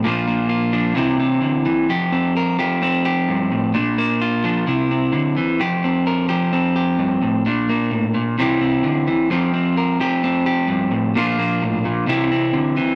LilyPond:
\new Staff \with { instrumentName = "Clean electric guitar" } { \time 4/4 \key f \major \tempo 4 = 129 << { <f bes d' f'>8 bes8 f'8 d'8 <e c' e' g'>8 c'4. | g'8 c'8 bes'8 g'8 c'8 g'4. | d'8 bes8 f'8 d'8 e'8 c'4. | g'8 c'8 bes'8 g'8 c'8 g'4. |
d'8 bes4. <e c' e' g'>8 c'4. | <f c' g'>8 c'8 bes'8 g'8 c'8 g'4. | <f bes d' f'>8 bes4. <e c' e' g'>8 c'4. | } \\ { bes,4. f8 c4 d8 e8 | f,4. f4. g,8 a,8 | bes,4. f8 c4 d8 e8 | f,4. f4. g,8 a,8 |
bes,4 a,8 bes,8 c4 d8 e8 | f,4. f4. g,8 a,8 | bes,4 a,8 bes,8 c4 d8 e8 | } >> }